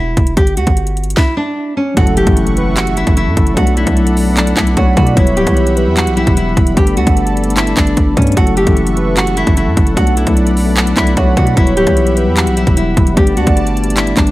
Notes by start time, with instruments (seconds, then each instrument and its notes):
Already playing: 808-style bass E1, nylon-string guitar E4
0.17 808-style bass E1, kick, closed hi-hat
0.27 closed hi-hat
0.37 808-style bass G1, nylon-string guitar G4, kick, closed hi-hat
0.47 closed hi-hat
0.57 808-style bass D2, nylon-string guitar F#4, closed hi-hat
0.67 808-style bass G1, kick, closed hi-hat
0.77 closed hi-hat
0.87 closed hi-hat
0.97 closed hi-hat, open hi-hat
1.04 closed hi-hat
1.10 closed hi-hat
1.17 nylon-string guitar E4, kick, snare
1.37 nylon-string guitar D4
1.77 nylon-string guitar C#4
1.94 808-style bass F#1, tine electric piano F#3 A3 C#4, nylon-string guitar F#4, soft synth lead A4, analog synth pad A4 E5 F#5 C#6, kick, closed hi-hat, impact
2.00 tine electric piano E4
2.07 closed hi-hat
2.17 nylon-string guitar G4, closed hi-hat
2.24 808-style bass F#1, tine electric piano E3 A3 C#4, kick, closed hi-hat
2.30 tine electric piano E4
2.37 closed hi-hat
2.47 closed hi-hat
2.57 soft synth lead B4, closed hi-hat
2.77 nylon-string guitar F#4, clap, closed hi-hat
2.87 closed hi-hat
2.97 nylon-string guitar E4, closed hi-hat
3.07 808-style bass F#1, kick, closed hi-hat
3.17 nylon-string guitar E4, closed hi-hat
3.27 808-style bass F#2
3.37 808-style bass F#1, kick, closed hi-hat
3.47 closed hi-hat
3.54 808-style bass B1, tine electric piano F#3 A3 B3, nylon-string guitar F#4, analog synth pad D5 F#5 B5, kick, closed hi-hat
3.60 tine electric piano D4
3.67 closed hi-hat
3.77 nylon-string guitar E4, closed hi-hat
3.84 808-style bass B1, tine electric piano F#3 A3 B3, kick, closed hi-hat
3.90 tine electric piano E4
3.97 closed hi-hat
4.07 closed hi-hat
4.17 open hi-hat
4.24 tine electric piano F#3 A3 B3
4.30 tine electric piano D4
4.37 nylon-string guitar D4, clap, closed hi-hat
4.47 closed hi-hat
4.57 808-style bass B1, nylon-string guitar E4, kick, clap, closed hi-hat
4.67 closed hi-hat
4.77 808-style bass B1, nylon-string guitar F#4, soft synth lead C#5, kick, closed hi-hat
4.94 808-style bass B2, tine electric piano F#3 A3 B3, nylon-string guitar F#4, soft synth lead D5, kick, closed hi-hat
5.00 tine electric piano E4
5.07 closed hi-hat
5.14 808-style bass E1, tine electric piano F#3 G3 B3, nylon-string guitar E4, analog synth pad G4 E5 F#5, soft synth lead C#5, kick, closed hi-hat
5.20 tine electric piano E4
5.27 closed hi-hat
5.37 808-style bass D1, nylon-string guitar G4, closed hi-hat
5.44 808-style bass B1, tine electric piano E3 G3 B3, kick, closed hi-hat
5.50 tine electric piano E4
5.57 closed hi-hat
5.67 closed hi-hat
5.77 soft synth lead B4, closed hi-hat
5.87 808-style bass E2
5.97 nylon-string guitar F#4, clap, closed hi-hat
6.07 808-style bass B1, closed hi-hat
6.17 nylon-string guitar E4, closed hi-hat
6.27 808-style bass E1, kick, closed hi-hat
6.37 nylon-string guitar E4, closed hi-hat
6.57 808-style bass E1, kick, closed hi-hat
6.67 closed hi-hat
6.74 808-style bass G1, tine electric piano G3 A3 B3, nylon-string guitar G4, analog synth pad A4 D5 A5, kick, closed hi-hat
6.80 tine electric piano D4
6.87 closed hi-hat
6.97 808-style bass D2, nylon-string guitar F#4, closed hi-hat
7.04 808-style bass G1, tine electric piano G3 A3 B3, kick, closed hi-hat
7.10 tine electric piano D4
7.17 closed hi-hat
7.27 closed hi-hat
7.37 closed hi-hat, open hi-hat
7.44 tine electric piano G3 A3, closed hi-hat
7.48 tine electric piano B3 D4, closed hi-hat
7.57 nylon-string guitar E4, clap, closed hi-hat
7.67 closed hi-hat
7.77 808-style bass G1, nylon-string guitar D4, kick, clap, closed hi-hat
7.87 closed hi-hat
7.97 808-style bass G1, kick, closed hi-hat
8.14 808-style bass G2, tine electric piano G3 A3 B3, nylon-string guitar C#4, kick, closed hi-hat
8.20 tine electric piano D4, closed hi-hat
8.27 closed hi-hat
8.32 tine electric piano F#3, closed hi-hat
8.36 808-style bass F#1, tine electric piano A3 C#4 E4, nylon-string guitar F#4, soft synth lead A4, analog synth pad A4 E5 F#5 C#6, kick, closed hi-hat
8.47 closed hi-hat
8.57 nylon-string guitar G4, closed hi-hat
8.64 808-style bass F#1, tine electric piano E3 A3 C#4, kick, closed hi-hat
8.70 tine electric piano E4
8.77 closed hi-hat
8.87 closed hi-hat
8.97 soft synth lead B4, closed hi-hat
9.17 nylon-string guitar F#4, clap, closed hi-hat
9.27 closed hi-hat
9.37 nylon-string guitar E4, closed hi-hat
9.47 808-style bass F#1, kick, closed hi-hat
9.57 nylon-string guitar E4, closed hi-hat
9.67 808-style bass F#2
9.77 808-style bass F#1, kick, closed hi-hat
9.87 closed hi-hat
9.94 808-style bass B1, tine electric piano F#3 A3 B3, nylon-string guitar F#4, analog synth pad D5 B5, kick, closed hi-hat
10.00 tine electric piano D4
10.07 closed hi-hat
10.17 nylon-string guitar E4, closed hi-hat
10.24 808-style bass B1, tine electric piano F#3 A3 B3, kick, closed hi-hat
10.30 tine electric piano E4
10.37 closed hi-hat
10.47 closed hi-hat
10.57 open hi-hat
10.64 tine electric piano F#3 A3 B3
10.70 tine electric piano D4
10.77 nylon-string guitar D4, clap, closed hi-hat
10.87 closed hi-hat
10.97 808-style bass B1, nylon-string guitar E4, kick, clap, closed hi-hat
11.07 closed hi-hat
11.17 808-style bass B1, nylon-string guitar F#4, soft synth lead C#5, kick, closed hi-hat
11.34 808-style bass B2, tine electric piano F#3 A3 B3, nylon-string guitar F#4, soft synth lead D5, kick, closed hi-hat
11.40 tine electric piano E4
11.47 closed hi-hat
11.54 808-style bass E1, tine electric piano F#3 G3 B3, nylon-string guitar E4, analog synth pad G4 E5, soft synth lead C#5, kick, closed hi-hat
11.60 tine electric piano E4
11.67 closed hi-hat
11.77 808-style bass D1, nylon-string guitar G4, closed hi-hat
11.84 808-style bass B1, tine electric piano E3 G3 B3, kick, closed hi-hat
11.90 tine electric piano E4
11.97 closed hi-hat
12.07 closed hi-hat
12.17 soft synth lead B4, closed hi-hat
12.27 808-style bass E2
12.37 nylon-string guitar F#4, clap, closed hi-hat
12.47 808-style bass B1, closed hi-hat
12.57 nylon-string guitar E4, closed hi-hat
12.67 808-style bass E1, kick, closed hi-hat
12.77 nylon-string guitar E4, closed hi-hat
12.97 808-style bass E1, kick, closed hi-hat
13.07 closed hi-hat
13.14 808-style bass G1, tine electric piano G3 A3 B3, analog synth pad G3 D5 A5, nylon-string guitar G4, kick, closed hi-hat
13.20 tine electric piano D4
13.27 closed hi-hat
13.37 808-style bass D2, nylon-string guitar F#4, closed hi-hat
13.44 808-style bass G1, tine electric piano G3 A3 B3, kick, closed hi-hat
13.50 tine electric piano D4
13.57 closed hi-hat
13.67 closed hi-hat
13.77 closed hi-hat, open hi-hat
13.84 tine electric piano G3 A3, closed hi-hat
13.88 tine electric piano B3 D4, closed hi-hat
13.97 nylon-string guitar E4, clap, closed hi-hat
14.07 closed hi-hat
14.17 808-style bass G1, nylon-string guitar D4, kick, clap, closed hi-hat
14.27 closed hi-hat